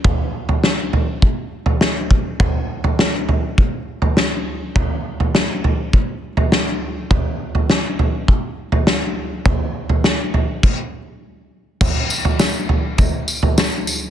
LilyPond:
\new DrumStaff \with { instrumentName = "Drums" } \drummode { \time 4/4 \tempo 4 = 102 <bd tomfh>8. tomfh16 sn8 tomfh8 bd8. tomfh16 sn8 bd8 | <bd tomfh>8. tomfh16 sn8 tomfh8 bd8. tomfh16 sn4 | <bd tomfh>8. tomfh16 sn8 tomfh8 bd8. tomfh16 sn4 | <bd tomfh>8. tomfh16 sn8 tomfh8 bd8. tomfh16 sn4 |
<bd tomfh>8. tomfh16 sn8 tomfh8 <cymc bd>4 r4 | <cymc bd tamb tomfh>8 tamb16 tomfh16 <sn tamb>8 tomfh8 <bd tamb tomfh>8 tamb16 tomfh16 <sn tamb>8 tamb8 | }